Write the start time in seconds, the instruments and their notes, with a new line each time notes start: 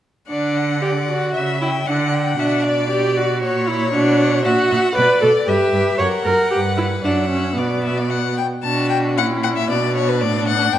0.29 cello D3, viola D4, violin D5 F#5
0.58 violin F#5
0.82 viola G4, violin D5
1.09 viola F#4
1.34 cello C#3, violin E5
1.61 viola E4, violin G5
1.86 cello D3, viola D4, violin F#5
2.14 violin G5
2.39 cello B2, viola D4, violin E5 F#5
2.65 violin D5
2.91 viola G4
3.17 viola F#4
3.43 cello A#2, violin C#5
3.68 viola E4
3.93 cello B2, viola D4, violin F#5
4.44 cello A#2, viola F#4, violin E5 F#5
4.70 cello A#2, violin E5
4.95 cello B2, viola B4, violin D5
5.22 cello B2, viola A4, violin D5
5.46 cello G2, viola G4, violin B4 E5
5.73 cello G2, violin B4
5.98 cello F#2, violin A#4 F#5, viola C#5
6.24 cello F#2, viola A#4, violin A#4
6.51 cello G2, viola G4, violin B4
6.77 viola E4
7.03 cello F#2, viola D4, violin E5 F#5
7.30 viola C#4
7.56 cello B2, viola B3, violin D5
7.84 violin E5
7.98 violin D5
8.10 violin F#5
8.38 violin G5
8.64 cello B2, viola D4, violin F#4 A5
8.90 violin G5
9.17 cello A#2, viola C#4, violin E4 F#5
9.44 violin F#5
9.56 violin E5
9.69 cello B2, viola B3, violin D4 D5
9.96 violin C#5
10.09 violin B4
10.21 cello A2, violin D5
10.48 violin F#5
10.72 cello G2, viola B3, violin G5